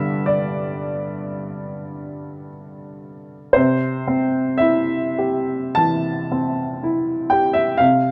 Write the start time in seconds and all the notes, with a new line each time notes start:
Already playing: G2 D3 B3 G4 E5
0.26 D5
3.53 C3 C5
4.08 C4
4.58 E4 E5
5.18 G4
5.75 E3 A5
6.32 C4
6.83 E4
7.30 G4 G5
7.53 E5
7.78 C3 F5